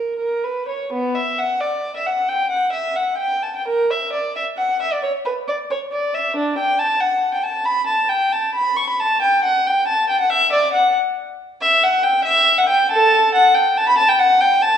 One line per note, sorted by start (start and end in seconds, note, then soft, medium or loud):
0.00 0.18 A#4 medium
0.20 0.42 A#4 medium
0.44 0.68 B4 medium
0.69 0.92 C#5 soft
0.93 1.15 B3 medium
1.15 1.38 E5 medium
1.38 1.61 F#5 medium
1.60 1.94 D5 medium
1.96 2.06 E5 medium
2.07 2.29 F#5 medium
2.28 2.51 G5 medium
2.51 2.73 F#5 medium
2.73 2.95 E5 medium
2.96 3.19 F#5 medium
3.18 3.42 G5 medium
3.43 3.55 A5 medium
3.56 3.67 G5 medium
3.68 3.90 A#4 medium
3.91 4.13 E5 medium
4.13 4.35 D5 medium
4.36 4.44 E5 medium
4.57 4.79 F#5 medium
4.82 4.92 E5 medium
4.93 5.03 D5 medium
5.03 5.11 C#5 medium
5.25 5.33 B4 medium
5.48 5.56 D5 medium
5.71 5.79 C#5 medium
5.92 6.13 D5 medium
6.15 6.36 E5 medium
6.37 6.58 D4 medium
6.58 6.79 G5 medium
6.79 7.01 A5 medium
7.01 7.34 F#5 medium
7.34 7.45 G5 medium
7.43 7.66 A5 medium
7.65 7.88 B5 medium
7.87 8.10 A5 medium
8.09 8.32 G5 medium
8.32 8.55 A5 medium
8.55 8.77 B5 medium
8.77 8.88 C#6 medium
8.89 9.00 B5 medium
9.00 9.22 A5 medium
9.22 9.43 G5 medium
9.44 9.65 F#5 medium
9.67 9.88 G5 loud
9.88 10.09 A5 medium
10.09 10.20 G5 medium
10.20 10.31 F#5 medium
10.30 10.52 E5 loud
10.53 10.74 D5 medium
10.73 10.95 F#5 medium
11.62 11.82 E5 loud
11.84 12.05 F#5 loud
12.04 12.26 G5 loud
12.25 12.57 E5 loud
12.58 12.69 F#5 loud
12.69 12.90 G5 loud
12.92 13.32 A4 medium
12.92 13.34 A5 loud
13.35 13.56 F#5 loud
13.55 13.77 G5 medium
13.78 13.88 A5 loud
13.89 13.99 B5 loud
13.98 14.09 A5 loud
14.09 14.20 G5 medium
14.19 14.42 F#5 loud
14.41 14.64 G5 loud
14.62 14.78 A5 loud